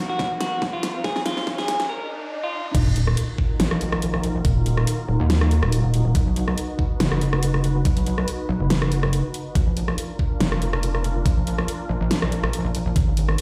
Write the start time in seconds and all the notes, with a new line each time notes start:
Already playing: D#2 D#3 A#3 D#4 F#4 A#4 F#5, riser
0.10 F#4
0.19 kick, snare
0.40 F#4, snare, closed hi-hat
0.62 kick, snare
0.73 F4
0.83 snare, closed hi-hat
1.04 G#4, kick, snare
1.16 snare
1.26 F4, snare, closed hi-hat
1.37 snare
1.47 kick, snare
1.58 G#4, snare
1.68 snare, closed hi-hat
1.80 snare, closed hi-hat
1.89 A#4, swell
2.44 F4
2.75 D#1 D#3 D#4 F4 F#4 A#4, kick, closed hi-hat, crash, sub drop
2.96 closed hi-hat
3.07 cross-stick
3.17 closed hi-hat
3.38 kick
3.60 A#1, snare, closed hi-hat
3.71 cross-stick
3.81 closed hi-hat
3.92 cross-stick
4.02 closed hi-hat
4.14 cross-stick
4.24 closed hi-hat
4.45 D#1, kick, closed hi-hat
4.66 closed hi-hat
4.77 cross-stick
4.87 closed hi-hat
5.09 D#1
5.20 D#2
5.30 snare, closed hi-hat
5.41 cross-stick
5.51 closed hi-hat
5.63 D#1, cross-stick
5.72 closed hi-hat
5.84 D#1
5.94 closed hi-hat
6.05 D#1
6.15 B1 B4, kick, closed hi-hat
6.36 closed hi-hat
6.48 cross-stick
6.58 closed hi-hat
6.79 kick
7.00 F#1, snare, closed hi-hat
7.12 cross-stick
7.21 closed hi-hat
7.33 cross-stick
7.43 closed hi-hat
7.54 cross-stick
7.64 closed hi-hat
7.85 B1, kick, closed hi-hat
7.97 closed hi-hat
8.06 closed hi-hat
8.18 cross-stick
8.28 closed hi-hat
8.49 B1
8.60 F#1
8.70 snare, closed hi-hat
8.82 cross-stick
8.92 closed hi-hat
9.03 cross-stick
9.13 closed hi-hat
9.34 closed hi-hat
9.55 A#1 D4 F4 A#4, kick, closed hi-hat
9.77 closed hi-hat
9.88 cross-stick
9.98 closed hi-hat
10.19 kick
10.40 F1, snare, closed hi-hat
10.52 cross-stick
10.62 closed hi-hat
10.73 cross-stick
10.83 closed hi-hat
10.95 cross-stick
11.04 closed hi-hat
11.26 A#1, kick, closed hi-hat
11.47 closed hi-hat
11.58 cross-stick
11.68 closed hi-hat
11.89 A#1
12.01 A#1
12.11 snare, closed hi-hat
12.22 cross-stick
12.32 closed hi-hat
12.43 A#1, cross-stick
12.53 closed hi-hat
12.65 A#1
12.75 closed hi-hat
12.86 A#1
12.96 G#1 D#4 G#4 B4, kick, closed hi-hat
13.17 closed hi-hat
13.29 cross-stick